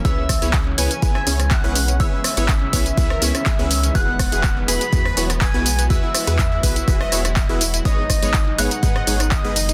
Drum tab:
HH |x-oxx-oxx-oxx-ox|x-oxx-oxx-oxx-ox|x-oxx-oxx-oxx-ox|x-oxx-oxx-oxx-ox|
TB |x-xxx-xxx-xxx-xx|x-xxx-xxx-xxx-xx|x-xxx-xxx-xxx-xx|x-xxx-xxx-xxx-xx|
CP |----x-------x---|----x-------x---|----x-------x---|----x-------x---|
SD |--r------r-r----|--r------r-r----|--r------r-r----|--r------r-r----|
BD |o-o-o---o---o---|o---o-o-o---o---|o-o-o---o---o---|o---o-o-o---o---|

HH |x-oxx-oxx-oxx-ox|
TB |x-xxx-xxx-xxx-xx|
CP |----x-------x---|
SD |--r------r-r----|
BD |o-o-o---o---o---|